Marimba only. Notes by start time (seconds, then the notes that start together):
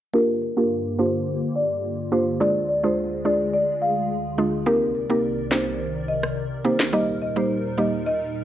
0.14 A#4
0.57 A#4
0.99 C5
1.56 D5
2.12 C5
2.40 D5
2.69 D5
2.84 C5
3.25 D5
3.54 D5
3.82 F5
4.67 A#4
5.10 A#4
5.51 C5
6.08 D#5
6.65 C5
6.93 D#5
7.22 D#5
7.37 C5
7.78 D#5
8.06 D#5